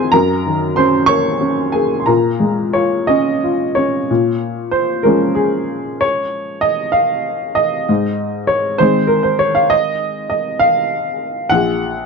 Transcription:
Already playing: F2 D#3 C4 F4 G#4 A#4 C5 G#5 A#5 C6
0.12 F#2 A#4 A#5
0.46 D#3
0.76 C#4 C5 C6
1.06 A#3 C#5 C#6
1.41 C#4
1.72 A#3 G#4 G#5
2.00 C6
2.06 A#2 A#4 A#5
2.40 G#3
2.73 F4 C#5
3.07 C#4 D#5
3.44 F4
3.75 C#4 C#5
4.11 A#2
4.71 C5
5.03 F3 G#3 C#4 A#4
5.35 G#4
6.01 C#5
6.61 D#5
6.92 F5
7.55 D#5
7.89 G#2
8.47 C#5
8.78 D#3 G#3 C4 C5
9.07 A#4
9.23 C5
9.39 C#5
9.55 F5
9.70 D#5
10.30 D#5
10.59 F5
11.49 A#1 F#5

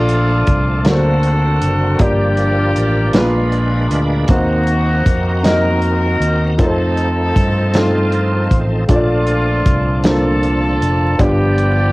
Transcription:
Already playing: A#1 A#2 F3 A3 D4 F4 A4 D5
0.09 closed hi-hat
0.47 C2, kick, closed hi-hat
0.84 D2 D3 A#3 C4 D4 F#4 A4 A#4, snare, closed hi-hat
0.92 C5
1.23 closed hi-hat
1.61 F#1, closed hi-hat
1.99 G1 G2 F3 A#3 D4 F4 G4 D5, kick, closed hi-hat
2.37 closed hi-hat
2.76 A1, closed hi-hat
3.13 A#1 A#2 G#3 A#3 B3 D4 F4 G#4 B4, snare, closed hi-hat
3.21 D4
3.52 closed hi-hat
3.91 D2, closed hi-hat
4.28 D#2 D#3 A#3 C4 D#4 F#4 A4 C5, kick, closed hi-hat
4.36 A#4
4.67 closed hi-hat
5.06 F2, kick, closed hi-hat
5.43 A#3 C4 D#4 F#4 A#4 D#5, snare, closed hi-hat
5.82 closed hi-hat
6.20 D#2, closed hi-hat
6.58 F2 F3 A3 C4 D#4 F4 A4 A#4, kick, closed hi-hat
6.66 C5
6.97 closed hi-hat
7.36 G2, kick, closed hi-hat
7.74 A3 C4 D#4 F4 A4, snare, closed hi-hat
7.78 A3
8.12 closed hi-hat
8.51 A1, kick, closed hi-hat
8.88 A#1 A#2 F3 A3 D4 F4 A4 C#5, kick, closed hi-hat
8.96 D5
9.27 closed hi-hat
9.66 C2, kick, closed hi-hat
10.04 A#3 D4 F4 A4 C5, snare, closed hi-hat
10.43 closed hi-hat
10.81 F1, closed hi-hat
11.19 G1 G2 F3 B3 D4 F4 G4 D5, kick, closed hi-hat
11.58 closed hi-hat

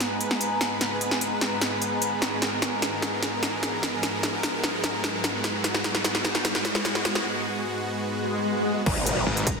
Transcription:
Already playing: G#2 G#3 B3 B4 G#5 A#5, riser
0.00 snare, closed hi-hat
0.21 closed hi-hat
0.31 snare
0.41 closed hi-hat
0.61 snare, closed hi-hat
0.81 snare, closed hi-hat
1.01 closed hi-hat
1.11 snare
1.21 closed hi-hat
1.41 snare, closed hi-hat
1.61 snare, closed hi-hat
1.82 closed hi-hat
2.02 closed hi-hat
2.22 snare, closed hi-hat
2.42 A#4, snare, closed hi-hat
2.62 snare, closed hi-hat
2.82 snare, closed hi-hat
3.02 snare, closed hi-hat
3.23 snare, closed hi-hat
3.43 snare, closed hi-hat
3.63 snare, closed hi-hat
3.83 snare, closed hi-hat
4.03 snare, closed hi-hat
4.23 snare, closed hi-hat
4.43 snare, closed hi-hat
4.64 snare, closed hi-hat
4.84 snare, closed hi-hat
5.04 snare, closed hi-hat
5.24 snare, closed hi-hat
5.44 snare, closed hi-hat
5.64 F#4, snare, closed hi-hat
5.74 snare
5.84 snare, closed hi-hat
5.95 snare
6.04 snare, closed hi-hat
6.15 snare
6.25 snare, closed hi-hat
6.35 snare
6.45 snare, closed hi-hat
6.55 snare
6.65 snare, closed hi-hat
6.75 snare
6.85 snare, closed hi-hat
6.95 snare
7.05 snare, closed hi-hat
7.15 snare
8.06 swell
8.86 G#1 G#3 D#4 A#4 B4, kick, crash, impact
9.06 closed hi-hat
9.27 G#1
9.37 closed hi-hat
9.47 kick, closed hi-hat

